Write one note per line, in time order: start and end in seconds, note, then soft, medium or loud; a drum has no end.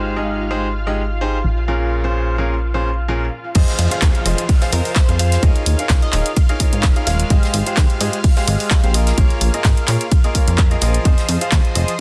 0.00 1.42 G#1 medium
0.00 0.14 G#3 medium
0.00 0.14 D#4 medium
0.00 3.54 F4 medium
0.00 0.13 G4 medium
0.00 0.14 G#4 medium
0.00 0.13 C5 loud
0.00 3.54 F5 medium
0.16 0.48 G#3 medium
0.16 0.48 D#4 medium
0.16 0.48 G4 medium
0.16 0.48 G#4 medium
0.16 0.48 D#5 medium
0.51 0.66 G#3 medium
0.51 0.66 D#4 medium
0.51 0.66 G4 medium
0.51 0.66 G#4 medium
0.51 0.66 C5 loud
0.87 1.00 G#3 medium
0.87 1.01 D#4 medium
0.87 1.01 G4 medium
0.87 1.01 G#4 medium
0.87 1.00 D#5 loud
1.21 1.36 D#4 medium
1.21 1.36 G4 medium
1.21 1.36 G#4 medium
1.21 1.36 C5 loud
1.44 3.30 A#1 medium
1.68 2.01 A#2 medium
1.68 2.01 C#4 medium
1.68 2.01 F4 medium
1.68 2.01 G#4 medium
1.68 2.01 A#4 medium
2.04 2.36 A#2 medium
2.04 2.36 C#4 medium
2.04 2.36 F4 medium
2.04 2.36 G#4 medium
2.04 2.36 C5 medium
2.38 2.53 A#2 medium
2.38 2.53 C#4 medium
2.38 2.53 F4 medium
2.38 2.53 G#4 medium
2.38 2.53 A#4 medium
2.74 2.88 A#2 medium
2.74 2.88 C#4 medium
2.74 2.88 F4 medium
2.74 2.88 G#4 medium
2.74 2.88 C5 loud
3.08 3.24 A#2 medium
3.08 3.24 C#4 medium
3.08 3.24 F4 medium
3.08 3.24 G#4 medium
3.08 3.24 A#4 loud
3.55 3.64 F2 loud
3.55 3.88 F3 medium
3.55 3.88 F4 medium
3.55 11.06 F4 medium
3.55 3.88 G#4 medium
3.55 3.88 C5 medium
3.55 3.88 D#5 loud
3.55 11.06 F5 medium
3.55 kick loud
3.55 closed hi-hat medium
3.55 crash loud
3.55 ride medium
3.55 downlifter medium
3.68 snare soft
3.68 closed hi-hat soft
3.79 3.88 F2 medium
3.79 open hi-hat loud
3.79 ride medium
3.91 4.23 F3 medium
3.91 4.23 F4 medium
3.91 4.23 G#4 medium
3.91 4.23 C5 medium
3.91 4.23 F5 medium
3.91 closed hi-hat medium
4.02 4.11 D#2 loud
4.02 kick loud
4.02 snare loud
4.02 clap loud
4.02 closed hi-hat medium
4.02 ride medium
4.15 closed hi-hat soft
4.26 4.34 F1 medium
4.26 4.41 F3 medium
4.26 4.41 F4 medium
4.26 4.41 G#4 medium
4.26 4.41 C5 medium
4.26 4.41 D#5 loud
4.26 open hi-hat loud
4.26 ride medium
4.38 closed hi-hat medium
4.38 ride soft
4.49 kick loud
4.49 closed hi-hat medium
4.49 open hi-hat medium
4.49 ride medium
4.61 4.70 F3 medium
4.61 4.70 F4 medium
4.61 4.70 G#4 medium
4.61 4.70 C5 medium
4.61 4.70 F5 loud
4.61 snare soft
4.61 closed hi-hat soft
4.72 4.81 F2 loud
4.72 5.06 F3 medium
4.72 5.06 F4 medium
4.72 5.06 G#4 medium
4.72 4.94 A#4 loud
4.72 5.06 C5 medium
4.72 5.06 D#5 medium
4.72 open hi-hat loud
4.72 ride medium
4.85 open hi-hat medium
4.95 5.43 C5 loud
4.95 kick loud
4.95 snare loud
4.95 clap loud
4.95 closed hi-hat medium
4.95 ride medium
5.09 5.38 F2 loud
5.09 5.17 F3 loud
5.09 5.17 F4 medium
5.09 5.17 G#4 medium
5.09 5.17 C5 medium
5.09 5.17 F5 loud
5.09 closed hi-hat soft
5.09 ride soft
5.19 5.40 F4 loud
5.19 5.40 G#4 medium
5.19 5.40 C5 medium
5.19 5.40 F5 loud
5.19 open hi-hat loud
5.19 ride medium
5.32 snare soft
5.32 closed hi-hat medium
5.43 5.52 D#2 loud
5.43 5.76 D#4 medium
5.43 5.76 G#4 medium
5.43 5.76 A#4 medium
5.43 5.76 C#5 medium
5.43 5.76 D#5 loud
5.43 kick loud
5.43 closed hi-hat medium
5.43 ride medium
5.56 closed hi-hat soft
5.66 5.75 D#2 medium
5.66 open hi-hat loud
5.66 ride medium
5.79 6.11 D#4 medium
5.79 6.11 G#4 medium
5.79 6.11 A#4 medium
5.79 6.11 C#5 medium
5.79 6.11 F5 loud
5.79 closed hi-hat medium
5.89 5.98 C#2 loud
5.89 kick loud
5.89 snare loud
5.89 clap loud
5.89 closed hi-hat medium
5.89 ride medium
6.02 6.37 D#5 medium
6.02 closed hi-hat soft
6.02 ride soft
6.13 6.22 D#1 medium
6.13 6.28 D#4 medium
6.13 6.28 G#4 medium
6.13 6.28 A#4 medium
6.13 6.28 C#5 medium
6.13 6.28 D#5 loud
6.13 clap medium
6.13 open hi-hat loud
6.13 ride medium
6.26 closed hi-hat medium
6.26 ride soft
6.37 kick loud
6.37 closed hi-hat medium
6.37 ride medium
6.37 ride loud
6.49 6.58 D#4 medium
6.49 6.58 G#4 medium
6.49 6.58 A#4 medium
6.49 6.58 C#5 medium
6.49 6.58 F5 loud
6.49 closed hi-hat soft
6.60 6.93 D#4 medium
6.60 6.93 G#4 medium
6.60 6.93 A#4 medium
6.60 6.93 C#5 medium
6.60 6.93 D#5 medium
6.60 kick medium
6.60 open hi-hat loud
6.60 ride medium
6.73 6.85 G#2 medium
6.73 closed hi-hat medium
6.83 6.92 D#1 loud
6.83 kick loud
6.83 snare loud
6.83 clap loud
6.83 closed hi-hat medium
6.83 ride medium
6.96 7.04 D#4 medium
6.96 7.04 G#4 medium
6.96 7.04 A#4 medium
6.96 7.04 C#5 medium
6.96 7.04 F5 loud
6.96 closed hi-hat soft
7.07 7.24 D#1 loud
7.07 7.28 G#3 loud
7.07 7.28 G#4 medium
7.07 7.28 A#4 medium
7.07 7.28 C#5 medium
7.07 7.28 F5 loud
7.07 snare soft
7.07 open hi-hat loud
7.07 ride medium
7.20 closed hi-hat medium
7.30 7.39 G#1 loud
7.30 7.63 G#3 medium
7.30 7.63 G4 medium
7.30 7.63 G#4 medium
7.30 7.63 C5 medium
7.30 7.63 D#5 loud
7.30 kick loud
7.30 closed hi-hat medium
7.30 ride medium
7.43 snare soft
7.43 closed hi-hat soft
7.54 7.63 G#1 medium
7.54 open hi-hat loud
7.54 ride medium
7.66 7.98 G#3 medium
7.66 7.98 G4 medium
7.66 7.98 G#4 medium
7.66 7.98 C5 medium
7.66 7.98 F5 medium
7.66 closed hi-hat medium
7.77 7.86 D#2 loud
7.77 kick loud
7.77 snare loud
7.77 clap loud
7.77 closed hi-hat medium
7.77 ride medium
7.90 closed hi-hat soft
8.01 8.09 G#2 medium
8.01 8.16 G#3 loud
8.01 8.16 G4 medium
8.01 8.16 G#4 medium
8.01 8.16 C5 medium
8.01 8.16 D#5 loud
8.01 open hi-hat loud
8.01 ride medium
8.13 closed hi-hat medium
8.13 ride soft
8.24 kick loud
8.24 closed hi-hat medium
8.24 open hi-hat medium
8.24 ride medium
8.37 8.45 G#3 medium
8.37 8.45 G4 medium
8.37 8.45 G#4 medium
8.37 8.45 C5 medium
8.37 8.45 F5 loud
8.37 snare soft
8.37 closed hi-hat soft
8.47 8.56 G#1 loud
8.47 8.81 G#3 medium
8.47 8.81 G4 medium
8.47 8.81 G#4 medium
8.47 8.81 C5 medium
8.47 8.81 D#5 medium
8.47 open hi-hat loud
8.47 ride medium
8.60 open hi-hat medium
8.70 kick loud
8.70 snare loud
8.70 clap loud
8.70 closed hi-hat medium
8.70 ride medium
8.84 9.12 A#1 loud
8.84 8.92 G4 medium
8.84 8.92 G#4 medium
8.84 8.92 C5 medium
8.84 8.92 F5 loud
8.84 closed hi-hat soft
8.84 ride soft
8.94 9.15 A#3 loud
8.94 9.15 F4 medium
8.94 9.15 G#4 medium
8.94 9.15 A#4 loud
8.94 9.15 D#5 loud
8.94 open hi-hat loud
8.94 ride medium
9.07 snare medium
9.07 closed hi-hat soft
9.18 9.27 A#1 loud
9.18 9.51 A#3 medium
9.18 9.51 F4 medium
9.18 9.51 G#4 medium
9.18 9.51 A#4 medium
9.18 9.51 C#5 loud
9.18 kick loud
9.18 closed hi-hat soft
9.18 ride medium
9.30 closed hi-hat soft
9.41 9.50 A#1 medium
9.41 open hi-hat loud
9.41 ride medium
9.54 9.86 A#3 medium
9.54 9.86 F4 medium
9.54 9.86 G#4 medium
9.54 9.86 A#4 medium
9.54 9.86 D#5 medium
9.54 closed hi-hat soft
9.64 9.73 G#2 loud
9.64 kick loud
9.64 snare loud
9.64 clap loud
9.64 closed hi-hat medium
9.64 ride medium
9.77 closed hi-hat soft
9.77 ride soft
9.88 9.97 A#2 medium
9.88 10.03 A#3 medium
9.88 10.03 F4 medium
9.88 10.03 G#4 medium
9.88 10.03 A#4 medium
9.88 10.03 C#5 loud
9.88 clap medium
9.88 open hi-hat loud
9.88 ride medium
10.00 closed hi-hat soft
10.00 ride soft
10.12 kick loud
10.12 closed hi-hat soft
10.12 ride medium
10.24 10.33 A#3 loud
10.24 10.33 F4 medium
10.24 10.33 G#4 medium
10.24 10.33 A#4 medium
10.24 10.33 D#5 loud
10.24 closed hi-hat soft
10.35 10.68 A#3 medium
10.35 10.68 F4 medium
10.35 10.68 G#4 medium
10.35 10.68 A#4 medium
10.35 10.68 C#5 medium
10.35 kick medium
10.35 open hi-hat loud
10.35 ride medium
10.48 10.77 F2 medium
10.48 closed hi-hat medium
10.58 kick loud
10.58 clap loud
10.58 closed hi-hat medium
10.58 ride medium
10.71 10.79 A#3 medium
10.71 10.79 F4 medium
10.71 10.79 G#4 medium
10.71 10.79 A#4 medium
10.71 10.79 D#5 loud
10.71 closed hi-hat soft
10.81 10.99 A#1 loud
10.81 11.03 F3 loud
10.81 11.03 F4 medium
10.81 11.03 G#4 medium
10.81 11.03 A#4 medium
10.81 11.03 D#5 loud
10.81 snare soft
10.81 open hi-hat loud
10.81 ride medium
10.94 closed hi-hat soft
11.05 11.14 F2 loud
11.05 11.38 F3 medium
11.05 11.38 F4 medium
11.05 11.38 G#4 medium
11.05 11.38 C5 medium
11.05 12.00 D#5 medium
11.05 11.38 D#5 loud
11.05 12.00 C6 medium
11.05 kick loud
11.05 closed hi-hat medium
11.05 ride loud
11.05 ride medium
11.18 snare soft
11.18 closed hi-hat soft
11.29 11.38 F2 medium
11.29 open hi-hat loud
11.29 ride medium
11.41 11.73 F3 medium
11.41 11.73 F4 medium
11.41 11.73 G#4 medium
11.41 11.73 C5 medium
11.41 11.73 F5 medium
11.41 closed hi-hat medium
11.51 11.61 D#2 loud
11.51 kick loud
11.51 snare loud
11.51 clap loud
11.51 closed hi-hat medium
11.51 ride medium
11.65 closed hi-hat soft
11.75 11.84 F1 medium
11.75 11.91 F3 loud
11.75 11.91 F4 medium
11.75 11.91 G#4 medium
11.75 11.91 C5 medium
11.75 11.91 D#5 loud
11.75 open hi-hat loud
11.75 ride medium
11.88 closed hi-hat soft
11.88 ride soft